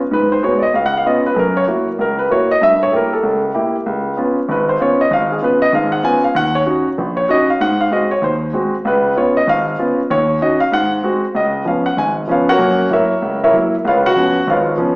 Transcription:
0.11 G#2 B4
0.32 C5
0.43 G#3 B3 F#4 C#5
0.59 D5 D#5
0.74 C#2 F5
0.86 F#5
0.97 F5
1.05 B3 C#4 F4 D#5
1.26 B4
1.34 F#2 A4
1.39 A#4
1.57 C#5
1.67 A#3 E4 F#4
1.99 C#2 A#4
2.19 B4
2.30 A#3 E4 F#4 C#5
2.51 D#5
2.62 G2 E5
2.83 C#5
2.92 A#3 E4 G4 A4
2.96 A#4
3.13 A4
3.23 C#2
3.54 A#3 E4 G4
3.86 C#2
4.17 B3 C#4 F4
4.49 G#1 B4
4.69 C5
4.80 B3 C#4 F4 C#5
5.01 D#5
5.11 G#1 F5
5.32 G#4
5.41 B3 C#4 F4 B4
5.62 D#5
5.73 G#1 G#2 F5
5.92 F#5
6.03 B3 C#4 F4 G#5
6.24 F5
6.35 D#2 F#5
6.55 C#5
6.66 C#4 D#4 F#4
6.98 A#1
7.17 C#5
7.29 C#4 D#4 F#4 D#5
7.50 F5
7.60 G#2 F#5
7.81 F5
7.91 G#3 C4 F#4 D#5
8.11 C#5
8.22 D#2 C5
8.53 G#3 C4 F#4
8.85 C#2 B4
9.16 B3 C#4 F4 C#5
9.37 D#5
9.47 G#1 F5
9.79 B3 C#4 F4
10.10 D#2 C#5
10.41 C#4 D#4 F#4 D#5
10.60 F5
10.72 G#2 F#5
11.03 G#3 C4 F#4
11.35 C#2 D#5
11.65 F3 B3 C#4 F5
11.86 F#5
11.97 G#1 G#5
12.28 F3 B3 C#4 F4 B4 C#5 F5
12.49 F#4 A#4 C#5 F#5
12.59 F#2 A#3
12.90 F#3 A#3 E4 A#4 C#5 E5
13.22 C#2
13.44 E4 A#4 C#5 E5
13.53 F#3 A#3 E4
13.85 C#2 F4 B4 C#5 F5
14.06 F#4 F#5
14.16 F3 B3 C#4
14.47 G#1 F4 B4 C#5 F5
14.78 F3 B3 C#4

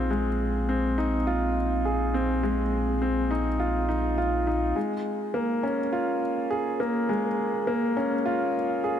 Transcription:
Already playing: A#1 C4 D#4 F4 G#4
0.11 G#3
0.69 C4
0.98 D#4
1.27 F4
1.85 G#4
2.14 C4
2.43 G#3
3.02 C4
3.31 D#4
3.60 F4
3.89 D#4
4.18 F4
4.47 D#4
4.76 G#3
5.34 A#3
5.63 C#4
5.93 F4
6.51 G#4
6.80 A#3
7.09 G#3
7.67 A#3
7.97 C#4
8.26 F4
8.84 G#4

